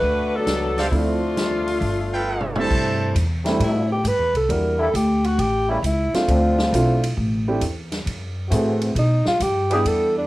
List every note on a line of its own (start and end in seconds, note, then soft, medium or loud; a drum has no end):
0.00 0.43 D2 medium
0.00 0.35 A3 medium
0.00 0.35 D4 medium
0.00 0.35 F#4 medium
0.00 0.35 B4 loud
0.36 0.79 F#3 medium
0.36 0.79 B3 medium
0.36 0.79 D4 medium
0.36 0.79 A4 medium
0.47 0.89 C#2 medium
0.47 snare medium
0.47 closed hi-hat soft
0.77 0.89 D3 medium
0.77 0.89 A3 medium
0.77 0.89 B3 medium
0.77 0.89 G4 medium
0.77 0.87 A4 medium
0.77 0.87 C5 medium
0.77 0.87 D5 medium
0.77 0.87 F5 medium
0.77 snare soft
0.77 open hi-hat soft
0.89 1.77 D2 medium
0.89 1.19 F3 medium
0.89 1.19 A3 medium
0.89 1.19 C4 soft
0.89 1.19 D4 medium
0.89 0.92 E4 medium
0.89 1.19 E4 medium
0.89 kick soft
0.89 open hi-hat soft
0.96 2.59 A3 medium
0.96 1.84 C4 medium
0.96 2.58 D4 medium
0.96 2.58 F4 medium
1.37 snare medium
1.37 closed hi-hat medium
1.67 open hi-hat soft
1.81 2.67 G1 medium
1.81 kick soft
1.81 open hi-hat soft
2.12 2.54 A4 medium
2.12 2.54 B4 medium
2.12 2.54 F5 medium
2.12 2.54 G5 medium
2.40 mid tom medium
2.56 3.14 G3 medium
2.56 3.14 A3 medium
2.56 3.14 C4 medium
2.56 3.14 D4 medium
2.56 3.14 E4 medium
2.56 3.13 A4 medium
2.56 3.13 C5 medium
2.56 3.13 E5 medium
2.56 3.13 A5 medium
2.56 mid tom medium
2.70 3.14 G2 medium
2.70 kick medium
2.70 crash medium
3.15 3.59 E2 medium
3.15 kick soft
3.15 hi-hat pedal medium
3.15 ride medium
3.44 4.02 C3 medium
3.44 4.01 G3 medium
3.44 3.60 G3 medium
3.44 4.02 A3 medium
3.44 3.60 A3 medium
3.44 3.60 C4 medium
3.44 3.60 D4 medium
3.44 4.02 E4 medium
3.44 3.60 E4 medium
3.44 snare soft
3.44 ride soft
3.60 4.03 A2 medium
3.60 kick soft
3.60 ride medium
3.64 3.90 E4 medium
3.92 4.09 G4 medium
4.04 4.18 G2 medium
4.04 4.36 B4 medium
4.04 kick soft
4.04 hi-hat pedal medium
4.04 ride medium
4.18 4.33 E2 medium
4.33 4.48 C2 medium
4.33 4.52 A4 medium
4.33 ride soft
4.49 4.93 E2 medium
4.49 4.77 G3 medium
4.49 4.77 A#3 soft
4.49 4.77 D4 soft
4.49 4.77 E4 soft
4.49 4.77 F#4 medium
4.49 4.82 A#4 medium
4.49 kick soft
4.49 ride medium
4.78 4.89 D3 medium
4.78 4.89 G3 medium
4.78 4.88 A#3 medium
4.78 4.89 E4 medium
4.78 4.97 A4 medium
4.94 5.37 D2 medium
4.94 5.27 G4 medium
4.94 kick soft
4.94 hi-hat pedal soft
4.94 ride medium
5.24 5.42 F#4 medium
5.24 ride soft
5.38 5.82 A1 medium
5.38 5.70 G4 medium
5.38 kick soft
5.38 ride medium
5.69 5.79 C#3 medium
5.69 5.79 G3 medium
5.69 5.79 A3 medium
5.69 5.87 B3 soft
5.69 5.79 E4 medium
5.83 6.11 C#2 medium
5.83 6.16 E4 medium
5.83 kick soft
5.83 hi-hat pedal medium
5.83 ride medium
6.12 6.70 A3 medium
6.12 6.70 C4 medium
6.12 6.70 D4 medium
6.12 6.71 F4 medium
6.12 7.18 F4 medium
6.12 6.71 E5 medium
6.12 muted upright bass stroke soft
6.12 snare medium
6.12 ride medium
6.28 6.72 D2 medium
6.28 6.97 D3 medium
6.28 6.97 F3 medium
6.28 6.97 C4 medium
6.28 kick soft
6.28 ride medium
6.58 snare medium
6.72 7.16 B1 medium
6.72 7.01 A3 medium
6.72 7.01 C4 medium
6.72 7.01 D4 medium
6.72 7.01 E4 medium
6.72 7.01 F4 medium
6.72 kick soft
6.72 hi-hat pedal medium
6.72 ride medium
7.03 ride medium
7.17 7.60 A1 medium
7.17 kick soft
7.48 7.61 A3 medium
7.48 7.61 C4 medium
7.48 7.61 D4 medium
7.48 7.61 E4 medium
7.48 7.61 G4 medium
7.61 8.05 E2 medium
7.61 kick soft
7.61 hi-hat pedal soft
7.61 ride medium
7.92 snare soft
7.92 ride soft
8.06 8.50 F#2 medium
8.06 kick soft
8.06 ride medium
8.48 8.94 A2 medium
8.48 8.95 E3 medium
8.48 8.95 A3 medium
8.48 8.95 C4 medium
8.48 8.95 F#4 medium
8.48 kick soft
8.48 hi-hat pedal medium
8.48 ride medium
8.53 8.97 A3 medium
8.53 8.97 C4 medium
8.53 8.97 E4 medium
8.53 8.97 F#4 medium
8.53 8.97 G#4 medium
8.82 ride medium
8.95 9.24 B2 medium
8.95 9.26 D#4 medium
8.95 kick soft
8.95 ride medium
9.25 9.44 F4 medium
9.25 muted upright bass stroke soft
9.25 snare soft
9.40 9.84 G2 medium
9.40 9.72 G4 medium
9.40 kick soft
9.40 hi-hat pedal soft
9.40 ride medium
9.70 9.81 E3 medium
9.70 10.27 G3 medium
9.70 9.81 B3 medium
9.70 10.27 B3 medium
9.70 9.80 D4 medium
9.70 10.27 D4 medium
9.70 10.27 E4 medium
9.70 9.80 G4 loud
9.70 10.27 G4 medium
9.70 9.89 G#4 medium
9.70 ride soft
9.85 10.27 E2 medium
9.85 10.17 A4 medium
9.85 kick soft
9.85 ride medium
10.18 10.27 D4 medium